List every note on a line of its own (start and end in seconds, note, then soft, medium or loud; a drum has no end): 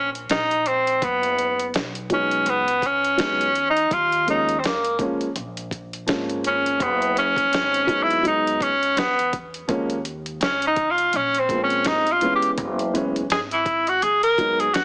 0.00 0.26 A#1 medium
0.00 0.10 C#4 medium
0.15 closed hi-hat medium
0.30 0.98 A#1 medium
0.30 0.69 D#4 loud
0.30 snare loud
0.30 closed hi-hat medium
0.51 closed hi-hat soft
0.66 1.06 C4 medium
0.66 closed hi-hat medium
0.87 closed hi-hat medium
1.02 1.70 F#1 loud
1.02 1.75 B3 medium
1.02 kick loud
1.02 closed hi-hat medium
1.23 closed hi-hat medium
1.39 closed hi-hat medium
1.59 closed hi-hat medium
1.74 2.43 B1 medium
1.74 snare loud
1.74 closed hi-hat medium
1.95 closed hi-hat soft
2.10 2.63 F#3 medium
2.10 2.63 G#3 medium
2.10 2.64 B3 medium
2.10 2.51 C#4 medium
2.10 2.64 D#4 medium
2.10 kick loud
2.10 closed hi-hat medium
2.31 closed hi-hat soft
2.46 3.15 C#2 loud
2.46 2.88 B3 medium
2.46 closed hi-hat medium
2.68 closed hi-hat medium
2.82 3.68 C#4 medium
2.82 kick medium
2.82 closed hi-hat medium
3.04 closed hi-hat soft
3.17 3.87 E2 medium
3.17 3.45 F#3 medium
3.17 3.45 G#3 medium
3.17 3.46 B3 medium
3.17 3.46 D#4 medium
3.17 snare loud
3.17 closed hi-hat medium
3.41 closed hi-hat soft
3.55 closed hi-hat medium
3.70 3.95 D#4 loud
3.77 closed hi-hat medium
3.91 4.59 D#2 loud
3.91 4.28 F4 loud
3.91 kick loud
3.91 closed hi-hat medium
4.12 closed hi-hat soft
4.26 4.53 F3 medium
4.26 4.54 G#3 medium
4.26 4.54 A#3 medium
4.26 4.55 C#4 medium
4.26 4.60 D#4 loud
4.26 closed hi-hat medium
4.49 closed hi-hat medium
4.59 4.67 C4 medium
4.63 5.32 C#2 medium
4.63 5.00 A#3 medium
4.63 snare loud
4.63 closed hi-hat medium
4.85 closed hi-hat medium
4.99 5.26 F3 medium
4.99 5.26 G#3 medium
4.99 5.27 A#3 medium
4.99 5.27 C#4 medium
4.99 kick loud
4.99 closed hi-hat medium
5.21 closed hi-hat soft
5.36 6.04 A#1 medium
5.36 closed hi-hat medium
5.57 closed hi-hat medium
5.71 kick medium
5.71 closed hi-hat medium
5.93 closed hi-hat soft
6.06 6.76 G#1 medium
6.06 6.79 F3 medium
6.06 6.80 G#3 medium
6.06 6.80 A#3 medium
6.06 6.80 C#4 medium
6.06 snare loud
6.06 closed hi-hat medium
6.30 closed hi-hat medium
6.44 6.84 C#4 medium
6.44 closed hi-hat medium
6.66 closed hi-hat medium
6.80 7.49 F#1 loud
6.80 7.17 B3 medium
6.80 kick loud
6.80 closed hi-hat medium
7.02 closed hi-hat medium
7.17 8.04 C#4 medium
7.17 closed hi-hat medium
7.37 kick medium
7.37 closed hi-hat medium
7.51 8.20 G#1 medium
7.51 snare loud
7.51 closed hi-hat medium
7.74 closed hi-hat medium
7.87 8.21 F#3 medium
7.87 8.22 G#3 medium
7.87 8.23 B3 medium
7.87 8.24 D#4 medium
7.87 kick loud
7.87 closed hi-hat medium
8.03 8.26 E4 loud
8.11 closed hi-hat soft
8.23 8.93 C#2 loud
8.23 8.68 F#3 medium
8.23 8.68 G#3 medium
8.23 8.69 B3 medium
8.23 8.69 D#4 medium
8.23 closed hi-hat medium
8.27 8.64 D#4 loud
8.47 closed hi-hat medium
8.61 9.00 C#4 medium
8.61 kick medium
8.61 closed hi-hat medium
8.83 closed hi-hat soft
8.96 9.65 E2 medium
8.96 9.34 B3 medium
8.96 snare loud
8.96 closed hi-hat loud
9.19 closed hi-hat soft
9.33 kick loud
9.33 closed hi-hat medium
9.54 closed hi-hat soft
9.68 10.37 D#2 loud
9.68 9.95 F3 medium
9.68 9.96 G#3 medium
9.68 9.96 A#3 medium
9.68 9.97 C#4 loud
9.68 kick loud
9.68 closed hi-hat medium
9.90 closed hi-hat medium
10.05 closed hi-hat medium
10.26 closed hi-hat medium
10.41 11.09 C#2 medium
10.41 10.65 C#4 medium
10.41 snare loud
10.41 closed hi-hat medium
10.62 closed hi-hat medium
10.67 10.92 D#4 medium
10.76 kick loud
10.76 closed hi-hat medium
10.91 11.17 F4 medium
10.98 closed hi-hat soft
11.13 11.82 A#1 medium
11.13 11.41 C#4 medium
11.13 closed hi-hat medium
11.35 closed hi-hat medium
11.39 11.62 C4 medium
11.49 12.02 F3 medium
11.49 12.03 G#3 medium
11.49 12.03 A#3 medium
11.49 11.58 B3 medium
11.49 kick medium
11.49 closed hi-hat medium
11.58 12.07 C4 medium
11.63 11.89 C#4 medium
11.70 closed hi-hat soft
11.85 12.54 G1 medium
11.85 12.13 D#4 loud
11.85 snare loud
11.85 closed hi-hat medium
12.07 closed hi-hat soft
12.12 12.35 F4 loud
12.21 12.92 E3 medium
12.21 12.93 G#3 medium
12.21 12.94 B3 medium
12.21 12.95 C#4 medium
12.21 closed hi-hat medium
12.35 12.51 G4 medium
12.42 closed hi-hat medium
12.58 13.27 F#1 loud
12.58 kick loud
12.58 closed hi-hat medium
12.79 closed hi-hat medium
12.94 13.21 E3 medium
12.94 13.21 G#3 medium
12.94 13.22 B3 medium
12.94 13.22 C#4 medium
12.94 closed hi-hat medium
13.16 closed hi-hat medium
13.30 13.99 G#1 medium
13.30 13.41 G#4 loud
13.30 snare loud
13.30 closed hi-hat medium
13.51 13.90 E4 loud
13.51 closed hi-hat medium
13.66 kick medium
13.66 closed hi-hat medium
13.87 14.05 F#4 loud
13.87 closed hi-hat medium
14.02 14.71 C#2 medium
14.02 14.23 G#4 loud
14.02 closed hi-hat medium
14.23 14.62 A#4 loud
14.23 closed hi-hat medium
14.38 14.65 F#3 medium
14.38 14.65 G#3 medium
14.38 14.66 B3 medium
14.38 14.66 D#4 medium
14.38 kick medium
14.38 closed hi-hat medium
14.60 14.76 G#4 loud
14.60 closed hi-hat soft
14.74 14.85 E2 medium
14.74 14.85 F#4 loud
14.74 snare loud
14.74 closed hi-hat medium